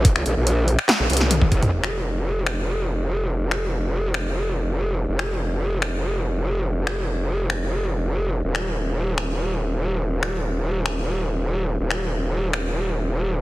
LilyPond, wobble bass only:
\new Staff \with { instrumentName = "Wobble bass" } { \clef bass \time 4/4 \key ees \mixolydian \tempo 4 = 143 bes,,16 des,16 bes,,16 bes,,4 r8 bes,,16 c,4. | f,,1~ | f,,1 | f,,1~ |
f,,1 | ees,,1~ | ees,,1 | ees,,1 | }